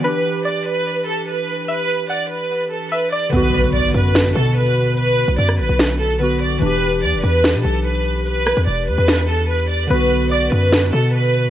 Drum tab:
HH |----------------|----------------|x--x--x-x--x-xx-|x--x--x-x--x-x-x|
SD |----------------|----------------|--------o-------|-----r--o-------|

HH |x--x--x-x--x-xx-|x--x--x-x--x-xox|x--x--x-x--x-xx-|
SD |--------o-------|--r-----o-------|--------o-------|